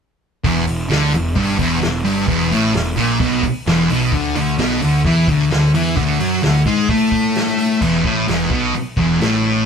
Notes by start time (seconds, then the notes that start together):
0.44 E1 E2, kick, open hi-hat
0.67 E1 E2, open hi-hat
0.90 D2 D3, snare, open hi-hat
1.13 E1 E2, open hi-hat
1.36 G1 G2, kick, open hi-hat
1.59 E1 E2, kick, open hi-hat
1.81 E1 E2, snare, open hi-hat
2.05 G1 G2, open hi-hat
2.28 E1 E2, kick, open hi-hat
2.51 A1 A2, open hi-hat
2.74 E1 E2, snare, open hi-hat
2.97 A#1 A#2, open hi-hat
3.20 B1 B2, kick, open hi-hat
3.43 muted picked electric bass stroke, muted distorted electric guitar stroke, kick, open hi-hat
3.66 E1 E2, snare, open hi-hat
3.90 B1 B2, open hi-hat
4.12 D2 D3, kick, open hi-hat
4.35 D2 D3, open hi-hat
4.58 B1 B2, snare, open hi-hat
4.82 D2 D3, open hi-hat
5.04 E2 E3, kick, open hi-hat
5.28 D2 D3, kick, open hi-hat
5.51 D2 D3, snare, open hi-hat
5.74 E2 E3, open hi-hat
5.97 D2 D3, kick, open hi-hat
6.20 F#2 F#3, open hi-hat
6.43 D2 D3, snare, open hi-hat
6.66 G#2 G#3, kick, open hi-hat
6.89 A2 A3, kick, open hi-hat
7.12 kick, open hi-hat
7.35 snare, open hi-hat
7.59 open hi-hat
7.81 E1 E2, kick, crash
8.04 A1 A2, kick
8.28 E1 E2, snare, open hi-hat
8.51 B1 B2, kick
8.74 muted distorted electric guitar stroke, muted picked electric bass stroke, open hi-hat
8.97 E1 E2, kick
9.20 A1 A2, snare, open hi-hat